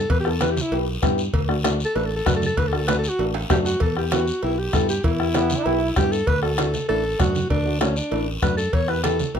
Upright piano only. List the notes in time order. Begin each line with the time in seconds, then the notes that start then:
0.26 B3 E4 A4
0.41 B3 E4 G4
0.72 B3 E4 G4
1.02 B3 E4 G4
1.48 A3 D4 F#4
1.64 A3 D4 F#4
1.95 A3 D4 A4
2.26 A3 D4 F#4
2.73 A3 D4 F#4
2.88 A3 D4 F#4
3.19 A3 D4 F#4
3.50 A3 D4 F#4
3.96 B3 E4 G4
4.12 B3 E4 G4
4.43 B3 E4 G4
4.73 B3 E4 G4
5.19 B3 E4 G4
5.34 B3 E4 G4
5.66 B3 E4 G4
5.97 B3 E4 G4
6.43 A3 D4 F#4
6.58 A3 D4 F#4
6.88 A3 D4 E4
7.19 A3 D4 F#4
7.65 A3 D4 F#4
7.81 A3 D4 F#4
8.11 A3 D4 E4
8.42 A3 D4 F#4
8.88 B3 E4 G4
9.04 B3 E4 G4
9.35 B3 E4 G4